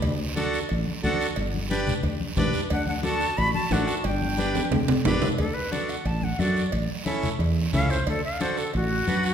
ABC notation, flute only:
X:1
M:4/4
L:1/8
Q:1/4=179
K:D
V:1 name="Flute"
z8 | z8 | f f a2 b a f a | g6 z2 |
A B d f a f d2 | z6 =f =c | A =f =c A ^F4 |]